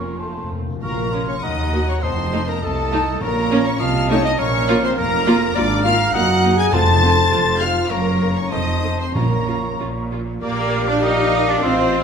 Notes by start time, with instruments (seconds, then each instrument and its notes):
Already playing: double bass section F1, timpani F2, cello section F2, viola section A#3 C#4, french horn section A#3 C#4, violin section C#4 F4, clarinet F4, cor anglais A#4, flute C#6
0.19 french horn section A3, viola section A3 C4, cor anglais A5, flute C6
0.28 timpani F2
0.36 timpani F2
0.44 timpani F2
0.51 timpani F2, french horn section A#3
0.60 timpani F2
0.68 timpani F2
0.76 timpani F2
0.82 double bass section A#1, cello section A#2, timpani A#2, french horn section A#3, violin section A#4 A#5, clarinet A#4, cor anglais F5, flute C#6
1.13 viola section A#3 C#4, flute C6
1.28 french horn section C#4, violin section C#5 C#6, clarinet C#5
1.43 cello section D#2, double bass section D#2, french horn section D#4, clarinet D#5, violin section D#5 D#6, cor anglais F#5, flute A#5
1.73 viola section A#3 F#4
1.88 french horn section C#4, violin section C#5 C#6, clarinet C#5
2.02 double bass section F1, timpani F2, cello section F2, french horn section C4, clarinet C5, violin section C5 C6, cor anglais D#5, flute A5
2.33 viola section A3 D#4
2.47 french horn section A#3, clarinet A#4, violin section A#4 A#5
2.61 cello section C2, double bass section C2, french horn section A3, clarinet A4, violin section A4 A5, cor anglais D#5, flute A5
2.92 viola section A3 D#4
3.21 double bass section A#1, cello section A#2, timpani A#2, french horn section A#3, clarinet A#4, violin section A#4 A#5, cor anglais C#5, flute A#5
3.51 viola section A#3 C#4
3.65 french horn section C#4, violin section C#5 C#6, clarinet C#5
3.79 double bass section C2, cello section C3, french horn section F4, cor anglais D#5, clarinet F5, violin section F5 F6, flute A5
4.09 viola section A3 D#4, french horn section C#4, violin section C#5 C#6, clarinet C#5
4.23 french horn section D#4, violin section D#5 D#6, clarinet D#5
4.37 double bass section A#1, cello section A#2, french horn section C#4, clarinet C#5, violin section C#5 C#6, cor anglais F5, flute A#5
4.68 viola section A#3 F4
4.81 french horn section C4, violin section C5 C6, clarinet C5
4.96 double bass section F1, cello section F2, french horn section A#3, violin section A#4 A#5, clarinet A#4, cor anglais F5, flute A#5
5.26 viola section A#3 F4
5.55 double bass section G#1, cello section G#2, viola section A#3 F4, french horn section D4, clarinet D5, violin section D5 D6, cor anglais F5, flute A#5
5.83 viola section A#3 F4, french horn section F4, violin section F5 F6, clarinet F5
6.13 double bass section F#1, cello section F#2, viola section A#3 D#4, french horn section F#4, cor anglais D#5, violin section F#5 F#6, clarinet F#5
6.44 viola section A#3 D#4
6.57 french horn section G#4, violin section G#5 G#6, clarinet G#5
6.71 double bass section F1, cello section F2, timpani F2, viola section C4 F4, french horn section A4, cor anglais C5, violin section A5 A6, clarinet A5, flute C6
7.03 viola section C4 F4
7.31 double bass section F1, cello section F2, viola section C4 F4
7.60 viola section C4 F4, french horn section F4, violin section F5 F6, clarinet F5
7.89 double bass section F#1, cello section F#2, french horn section A#3, viola section A#3 A#4, violin section A#4 A#5, clarinet A#4, cor anglais C#5, flute A#5
8.21 viola section A#3 A#4
8.35 french horn section C#4, violin section C#5 C#6, clarinet C#5
8.51 double bass section F1, cello section F2, viola section C4 A4, french horn section D#4, cor anglais C5, violin section D#5 D#6, clarinet D#5, flute A5
8.84 viola section C4 A4
8.99 french horn section C4, violin section C5 C6, clarinet C5
9.14 double bass section A#1, cello section A#2, timpani A#2, french horn section A#3, viola section C#4 F4, violin section A#4 A#5, clarinet A#4, cor anglais C#5, flute A#5
9.48 viola section C#4 F4
9.79 double bass section A#1, cello section A#2, viola section C#4 F4
10.11 viola section C#4 F4
10.42 double bass section A#1, cor anglais A#3, cello section A#3, french horn section F4 D5, viola section G4 D5, violin section A#4, trumpet F5
10.88 cor anglais D4, cello section D4, violin section D5
11.03 cor anglais D#4, cello section D#4, clarinet G4, viola section A#4, violin section D#5
11.47 cor anglais D4, cello section D4, violin section D5
11.62 double bass section A1, cor anglais C4, cello section C4, clarinet F4, viola section F4 C5, french horn section F4 D#5, violin section C5, trumpet F5